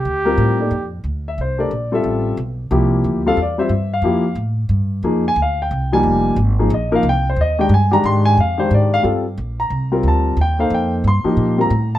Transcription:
Already playing: trumpet G4
0.05 upright bass D2
0.25 upright piano G3 C4 F4 A#4
0.37 upright bass A2
0.59 upright piano A#3 D#4 A4 D5
0.71 upright bass F2
1.04 upright bass D2
1.28 upright piano E5
1.38 upright bass C2, upright piano C5
1.58 upright piano A3 D4 G4 A#4 D5
1.71 upright bass A#1
1.92 upright piano G3 C4 F4 A4 E5
2.04 upright bass A1
2.37 upright bass B1
2.71 upright bass C2, upright piano F3 A#3 E4 G4
3.04 upright bass D2
3.26 upright piano G3 C4 F4 A4 F5
3.37 upright bass E2
3.42 upright piano D5
3.58 upright piano G3 C4 F4 C5 E5
3.69 upright bass G2
3.93 upright piano F5
4.02 upright bass F2, upright piano F3 A#3 E4 G4
4.35 upright bass A2
4.69 upright bass G2
5.03 upright bass F2, upright piano F3 A#3 D#4 G#4
5.28 upright piano G#5
5.36 upright bass D2
5.42 upright piano F5
5.62 upright piano G5
5.71 upright bass C2
5.92 upright piano F3 G3 A#3 D#4 G#5
6.03 upright bass F1
6.36 upright bass G#1
6.59 upright piano F3 A#3 D#4 G#4
6.70 upright bass A#1, upright piano D#5
6.92 upright piano F3 A#3 D#4 A#4 F5
7.03 upright bass C2
7.09 upright piano G5
7.30 upright piano C5
7.36 upright bass D#2
7.41 upright piano D#5
7.59 upright piano D#3 G#3 D4 G4 G5
7.69 upright bass G2
7.74 upright piano G#5
7.91 upright piano D#3 G#3 D4 G4 A#5
8.04 upright bass G#2, upright piano C6
8.25 upright piano G#5
8.37 upright bass F2, upright piano F5
8.58 upright piano D#3 G#3 D4 G4 C5
8.71 upright bass G#2, upright piano D5
8.94 upright piano F5
9.03 upright bass G2, upright piano G3 C4 F4 A4
9.38 upright bass A#1
9.60 upright piano A#5
9.70 upright bass C2
9.92 upright piano G3 C4 F4 A#4
10.03 upright bass D2
10.08 upright piano A5
10.37 upright bass D#2
10.41 upright piano G5
10.59 upright piano A#3 D#4 A4 C5 F5
10.70 upright bass F2
10.74 upright piano G5
11.04 upright bass G2, upright piano C6
11.24 upright piano F3 A#3 D#4 G4, muted upright bass stroke
11.37 upright bass A#2
11.58 upright piano G3 C4 F4 A#4 A#5
11.70 upright bass A2
11.95 upright piano A5

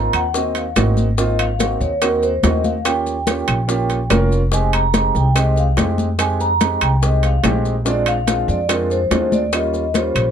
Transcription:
Already playing: grand piano A#3 C4 D#4 F4, vibraphone A#5
0.13 upright bass D#2, vibraphone F#5, high conga, high timbale, claves, maracas
0.34 grand piano A#3 C4 D#4 F#4, vibraphone D#5, high bongo, high conga, maracas
0.55 vibraphone F5, high bongo, high conga, high timbale, maracas
0.76 upright bass G#1, grand piano A#3 C4 D#4 F#4, high bongo, low bongo, high conga, high timbale, low timbale, claves, maracas
0.97 high bongo, high conga, maracas
1.18 grand piano A#3 C4 D#4 F4, vibraphone D#5, high bongo, high conga, maracas
1.39 vibraphone F5, high conga, high timbale, claves, maracas
1.59 grand piano A#3 C4 D#4 F#4, high bongo, high conga, high timbale, low timbale, maracas
1.81 upright bass D#2, vibraphone C#5, high bongo, high conga, maracas
2.02 grand piano A#3 C4 D#4 F#4, vibraphone A#4, high bongo, high conga, high timbale, claves, maracas
2.23 vibraphone C5, high bongo, high conga, maracas
2.43 upright bass D#2, grand piano A#3 C4 D#4 F#4, vibraphone D#5, high bongo, low bongo, high conga, high timbale, low timbale, maracas
2.64 vibraphone F5, high bongo, high conga, maracas
2.85 grand piano A#3 C#4 F4 G4, vibraphone G5, high bongo, high conga, high timbale, claves, maracas
3.06 high bongo, high conga, maracas
3.26 grand piano A#3 C#4 F4 G4, high bongo, high conga, high timbale, low timbale, maracas
3.48 upright bass A#1, high conga, high timbale, claves, maracas
3.68 grand piano A#3 C#4 F4 G4, high bongo, high conga, maracas
3.89 high bongo, high conga, high timbale, maracas
4.10 upright bass F1, grand piano A#3 C#4 F4 A#4, high bongo, low bongo, high conga, high timbale, low timbale, claves, maracas
4.31 high bongo, maracas
4.52 grand piano G#3 C4 D#4 G4, vibraphone G#5, high bongo, high conga, maracas
4.73 vibraphone A#5, high conga, high timbale, claves, maracas
4.94 grand piano G#3 C4 D#4 G4, high bongo, high conga, high timbale, low timbale, maracas
5.15 upright bass C2, vibraphone G5, high bongo, high conga, maracas
5.35 grand piano G#3 C4 D#4 G4, vibraphone D#5, high bongo, high conga, high timbale, claves, maracas
5.56 vibraphone F5, high bongo, high conga, maracas
5.77 upright bass F2, grand piano G#3 C4 D#4 G4, high bongo, low bongo, high conga, high timbale, low timbale, maracas
5.98 high bongo, high conga, maracas
6.18 grand piano G#3 C4 D#4 G4, vibraphone G#5, high bongo, high conga, high timbale, claves, maracas
6.40 vibraphone A#5, high bongo, high conga, maracas
6.61 grand piano G#3 C4 D#4 G4, high bongo, high conga, high timbale, low timbale, maracas
6.81 upright bass C2, vibraphone G5, high conga, high timbale, claves, maracas
7.02 grand piano G#3 C4 D#4 G4, vibraphone D#5, high bongo, high conga, maracas
7.23 vibraphone F5, high bongo, high conga, high timbale, maracas
7.43 upright bass A#1, grand piano G#3 C4 D#4 G4, high bongo, low bongo, high conga, high timbale, low timbale, claves, maracas
7.65 high bongo, maracas
7.85 grand piano G#3 C4 D4 F4, vibraphone D5, high bongo, high conga, maracas
8.06 vibraphone F5, high conga, high timbale, claves, maracas
8.27 grand piano G#3 C4 D4 F4, high bongo, high conga, high timbale, low timbale, maracas
8.48 upright bass F2, vibraphone D5, high bongo, high conga, maracas
8.69 grand piano G#3 C4 D4 F4, vibraphone A#4, high bongo, high conga, high timbale, claves, maracas
8.90 vibraphone C5, high bongo, high conga, maracas
9.11 upright bass D#2, grand piano G#3 C4 D4 F4, high bongo, low bongo, high conga, high timbale, low timbale, maracas
9.32 vibraphone D5, high bongo, high conga, maracas
9.53 grand piano G3 A#3 C#4 F4, vibraphone D#5, high bongo, high timbale, claves, maracas
9.74 high bongo, high conga, maracas
9.94 grand piano G3 A#3 C#4 F4, vibraphone C5, high bongo, high conga, high timbale, low timbale, maracas
10.15 upright bass A#1, high conga, high timbale, claves, maracas

